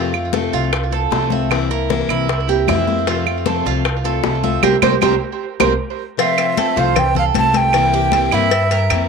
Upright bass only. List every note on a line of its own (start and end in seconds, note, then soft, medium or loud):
0.00 0.47 F2 medium
0.53 1.07 C2 medium
1.11 2.03 C2 medium
2.09 2.64 C2 loud
2.68 3.60 F2 medium
3.66 4.20 C2 loud
4.24 4.60 C2 medium
4.63 4.77 C2 medium
4.82 4.97 C2 loud
5.01 5.16 C2 medium
5.60 5.75 C2 loud
6.76 7.31 C2 loud
7.35 8.27 C2 medium
8.32 8.87 G2 loud
8.90 9.09 F2 medium